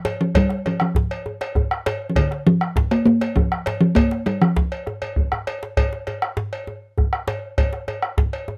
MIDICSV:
0, 0, Header, 1, 5, 480
1, 0, Start_track
1, 0, Tempo, 301205
1, 555, Time_signature, 12, 3, 24, 8
1, 13668, End_track
2, 0, Start_track
2, 0, Title_t, "Talking drum"
2, 0, Program_c, 0, 116
2, 0, Note_on_c, 0, 53, 106
2, 274, Note_off_c, 0, 53, 0
2, 330, Note_on_c, 0, 53, 97
2, 583, Note_on_c, 0, 55, 100
2, 607, Note_off_c, 0, 53, 0
2, 1050, Note_off_c, 0, 55, 0
2, 1065, Note_on_c, 0, 53, 85
2, 1275, Note_off_c, 0, 53, 0
2, 1296, Note_on_c, 0, 53, 84
2, 1958, Note_off_c, 0, 53, 0
2, 3339, Note_on_c, 0, 53, 71
2, 3447, Note_on_c, 0, 50, 91
2, 3471, Note_off_c, 0, 53, 0
2, 3919, Note_off_c, 0, 50, 0
2, 3929, Note_on_c, 0, 53, 101
2, 4371, Note_off_c, 0, 53, 0
2, 4642, Note_on_c, 0, 58, 100
2, 4859, Note_off_c, 0, 58, 0
2, 4869, Note_on_c, 0, 58, 99
2, 5348, Note_on_c, 0, 53, 99
2, 5372, Note_off_c, 0, 58, 0
2, 6055, Note_off_c, 0, 53, 0
2, 6065, Note_on_c, 0, 53, 93
2, 6296, Note_on_c, 0, 58, 97
2, 6320, Note_off_c, 0, 53, 0
2, 6790, Note_on_c, 0, 55, 93
2, 6814, Note_off_c, 0, 58, 0
2, 7036, Note_on_c, 0, 53, 94
2, 7060, Note_off_c, 0, 55, 0
2, 7758, Note_off_c, 0, 53, 0
2, 13668, End_track
3, 0, Start_track
3, 0, Title_t, "Bombo"
3, 553, Note_on_c, 9, 43, 112
3, 713, Note_off_c, 9, 43, 0
3, 787, Note_on_c, 9, 37, 34
3, 947, Note_off_c, 9, 37, 0
3, 1271, Note_on_c, 9, 37, 86
3, 1430, Note_off_c, 9, 37, 0
3, 1510, Note_on_c, 9, 43, 98
3, 1669, Note_off_c, 9, 43, 0
3, 2248, Note_on_c, 9, 37, 35
3, 2407, Note_off_c, 9, 37, 0
3, 2475, Note_on_c, 9, 37, 33
3, 2475, Note_on_c, 9, 43, 101
3, 2635, Note_off_c, 9, 37, 0
3, 2635, Note_off_c, 9, 43, 0
3, 2728, Note_on_c, 9, 37, 76
3, 2887, Note_off_c, 9, 37, 0
3, 3437, Note_on_c, 9, 43, 102
3, 3596, Note_off_c, 9, 43, 0
3, 3681, Note_on_c, 9, 37, 34
3, 3841, Note_off_c, 9, 37, 0
3, 4162, Note_on_c, 9, 37, 78
3, 4321, Note_off_c, 9, 37, 0
3, 4395, Note_on_c, 9, 43, 105
3, 4554, Note_off_c, 9, 43, 0
3, 5121, Note_on_c, 9, 37, 32
3, 5280, Note_off_c, 9, 37, 0
3, 5364, Note_on_c, 9, 37, 37
3, 5364, Note_on_c, 9, 43, 110
3, 5524, Note_off_c, 9, 37, 0
3, 5524, Note_off_c, 9, 43, 0
3, 5606, Note_on_c, 9, 37, 75
3, 5765, Note_off_c, 9, 37, 0
3, 6317, Note_on_c, 9, 43, 106
3, 6476, Note_off_c, 9, 43, 0
3, 6565, Note_on_c, 9, 37, 36
3, 6724, Note_off_c, 9, 37, 0
3, 7038, Note_on_c, 9, 37, 84
3, 7197, Note_off_c, 9, 37, 0
3, 7276, Note_on_c, 9, 43, 101
3, 7436, Note_off_c, 9, 43, 0
3, 7753, Note_on_c, 9, 37, 31
3, 7912, Note_off_c, 9, 37, 0
3, 8228, Note_on_c, 9, 43, 105
3, 8388, Note_off_c, 9, 43, 0
3, 8474, Note_on_c, 9, 37, 81
3, 8634, Note_off_c, 9, 37, 0
3, 9195, Note_on_c, 9, 43, 100
3, 9355, Note_off_c, 9, 43, 0
3, 9915, Note_on_c, 9, 37, 81
3, 10074, Note_off_c, 9, 37, 0
3, 11129, Note_on_c, 9, 37, 34
3, 11129, Note_on_c, 9, 43, 96
3, 11288, Note_off_c, 9, 37, 0
3, 11288, Note_off_c, 9, 43, 0
3, 11358, Note_on_c, 9, 37, 77
3, 11517, Note_off_c, 9, 37, 0
3, 12076, Note_on_c, 9, 43, 98
3, 12236, Note_off_c, 9, 43, 0
3, 12329, Note_on_c, 9, 37, 33
3, 12489, Note_off_c, 9, 37, 0
3, 12788, Note_on_c, 9, 37, 79
3, 12948, Note_off_c, 9, 37, 0
3, 13028, Note_on_c, 9, 43, 97
3, 13188, Note_off_c, 9, 43, 0
3, 13668, End_track
4, 0, Start_track
4, 0, Title_t, "Djembe"
4, 78, Note_on_c, 9, 62, 80
4, 78, Note_on_c, 9, 63, 79
4, 237, Note_off_c, 9, 62, 0
4, 237, Note_off_c, 9, 63, 0
4, 561, Note_on_c, 9, 64, 71
4, 720, Note_off_c, 9, 64, 0
4, 803, Note_on_c, 9, 62, 59
4, 963, Note_off_c, 9, 62, 0
4, 1048, Note_on_c, 9, 63, 73
4, 1208, Note_off_c, 9, 63, 0
4, 1530, Note_on_c, 9, 62, 82
4, 1530, Note_on_c, 9, 64, 83
4, 1690, Note_off_c, 9, 62, 0
4, 1690, Note_off_c, 9, 64, 0
4, 2004, Note_on_c, 9, 63, 71
4, 2164, Note_off_c, 9, 63, 0
4, 2246, Note_on_c, 9, 62, 56
4, 2405, Note_off_c, 9, 62, 0
4, 2487, Note_on_c, 9, 64, 88
4, 2647, Note_off_c, 9, 64, 0
4, 2973, Note_on_c, 9, 62, 89
4, 2973, Note_on_c, 9, 63, 89
4, 3133, Note_off_c, 9, 62, 0
4, 3133, Note_off_c, 9, 63, 0
4, 3451, Note_on_c, 9, 64, 82
4, 3610, Note_off_c, 9, 64, 0
4, 3693, Note_on_c, 9, 62, 63
4, 3852, Note_off_c, 9, 62, 0
4, 3931, Note_on_c, 9, 63, 86
4, 4090, Note_off_c, 9, 63, 0
4, 4408, Note_on_c, 9, 62, 90
4, 4408, Note_on_c, 9, 64, 81
4, 4567, Note_off_c, 9, 62, 0
4, 4567, Note_off_c, 9, 64, 0
4, 4889, Note_on_c, 9, 63, 87
4, 5048, Note_off_c, 9, 63, 0
4, 5126, Note_on_c, 9, 62, 62
4, 5285, Note_off_c, 9, 62, 0
4, 5364, Note_on_c, 9, 64, 84
4, 5523, Note_off_c, 9, 64, 0
4, 5847, Note_on_c, 9, 62, 92
4, 5847, Note_on_c, 9, 63, 91
4, 6006, Note_off_c, 9, 62, 0
4, 6006, Note_off_c, 9, 63, 0
4, 6319, Note_on_c, 9, 64, 82
4, 6479, Note_off_c, 9, 64, 0
4, 6554, Note_on_c, 9, 62, 62
4, 6714, Note_off_c, 9, 62, 0
4, 6799, Note_on_c, 9, 62, 27
4, 6799, Note_on_c, 9, 63, 81
4, 6959, Note_off_c, 9, 62, 0
4, 6959, Note_off_c, 9, 63, 0
4, 7274, Note_on_c, 9, 62, 87
4, 7433, Note_off_c, 9, 62, 0
4, 7523, Note_on_c, 9, 62, 27
4, 7683, Note_off_c, 9, 62, 0
4, 7761, Note_on_c, 9, 62, 24
4, 7761, Note_on_c, 9, 63, 83
4, 7920, Note_off_c, 9, 62, 0
4, 7920, Note_off_c, 9, 63, 0
4, 8001, Note_on_c, 9, 64, 40
4, 8160, Note_off_c, 9, 64, 0
4, 8244, Note_on_c, 9, 64, 51
4, 8403, Note_off_c, 9, 64, 0
4, 8486, Note_on_c, 9, 64, 53
4, 8645, Note_off_c, 9, 64, 0
4, 8726, Note_on_c, 9, 62, 62
4, 8886, Note_off_c, 9, 62, 0
4, 8968, Note_on_c, 9, 62, 66
4, 9127, Note_off_c, 9, 62, 0
4, 9198, Note_on_c, 9, 64, 74
4, 9357, Note_off_c, 9, 64, 0
4, 9443, Note_on_c, 9, 62, 56
4, 9603, Note_off_c, 9, 62, 0
4, 9680, Note_on_c, 9, 63, 73
4, 9840, Note_off_c, 9, 63, 0
4, 10149, Note_on_c, 9, 62, 77
4, 10149, Note_on_c, 9, 64, 69
4, 10308, Note_off_c, 9, 62, 0
4, 10308, Note_off_c, 9, 64, 0
4, 10635, Note_on_c, 9, 63, 69
4, 10795, Note_off_c, 9, 63, 0
4, 11117, Note_on_c, 9, 64, 73
4, 11276, Note_off_c, 9, 64, 0
4, 11594, Note_on_c, 9, 62, 87
4, 11594, Note_on_c, 9, 63, 75
4, 11753, Note_off_c, 9, 62, 0
4, 11753, Note_off_c, 9, 63, 0
4, 12078, Note_on_c, 9, 64, 69
4, 12237, Note_off_c, 9, 64, 0
4, 12312, Note_on_c, 9, 62, 54
4, 12472, Note_off_c, 9, 62, 0
4, 12555, Note_on_c, 9, 63, 78
4, 12715, Note_off_c, 9, 63, 0
4, 13033, Note_on_c, 9, 62, 83
4, 13033, Note_on_c, 9, 64, 74
4, 13192, Note_off_c, 9, 62, 0
4, 13192, Note_off_c, 9, 64, 0
4, 13514, Note_on_c, 9, 63, 77
4, 13668, Note_off_c, 9, 63, 0
4, 13668, End_track
5, 0, Start_track
5, 0, Title_t, "Drums"
5, 79, Note_on_c, 9, 56, 57
5, 239, Note_off_c, 9, 56, 0
5, 560, Note_on_c, 9, 56, 76
5, 719, Note_off_c, 9, 56, 0
5, 1048, Note_on_c, 9, 56, 48
5, 1208, Note_off_c, 9, 56, 0
5, 1770, Note_on_c, 9, 56, 47
5, 1930, Note_off_c, 9, 56, 0
5, 2252, Note_on_c, 9, 56, 55
5, 2412, Note_off_c, 9, 56, 0
5, 2968, Note_on_c, 9, 56, 61
5, 3127, Note_off_c, 9, 56, 0
5, 3446, Note_on_c, 9, 56, 74
5, 3605, Note_off_c, 9, 56, 0
5, 4641, Note_on_c, 9, 56, 53
5, 4801, Note_off_c, 9, 56, 0
5, 5121, Note_on_c, 9, 56, 55
5, 5280, Note_off_c, 9, 56, 0
5, 5833, Note_on_c, 9, 56, 59
5, 5992, Note_off_c, 9, 56, 0
5, 6314, Note_on_c, 9, 56, 71
5, 6473, Note_off_c, 9, 56, 0
5, 6796, Note_on_c, 9, 56, 47
5, 6956, Note_off_c, 9, 56, 0
5, 7519, Note_on_c, 9, 56, 44
5, 7679, Note_off_c, 9, 56, 0
5, 7996, Note_on_c, 9, 56, 52
5, 8155, Note_off_c, 9, 56, 0
5, 8720, Note_on_c, 9, 56, 60
5, 8879, Note_off_c, 9, 56, 0
5, 9199, Note_on_c, 9, 56, 69
5, 9358, Note_off_c, 9, 56, 0
5, 9672, Note_on_c, 9, 56, 46
5, 9831, Note_off_c, 9, 56, 0
5, 10401, Note_on_c, 9, 56, 42
5, 10560, Note_off_c, 9, 56, 0
5, 11596, Note_on_c, 9, 56, 48
5, 11756, Note_off_c, 9, 56, 0
5, 12078, Note_on_c, 9, 56, 56
5, 12237, Note_off_c, 9, 56, 0
5, 12558, Note_on_c, 9, 56, 41
5, 12717, Note_off_c, 9, 56, 0
5, 13278, Note_on_c, 9, 56, 44
5, 13437, Note_off_c, 9, 56, 0
5, 13668, End_track
0, 0, End_of_file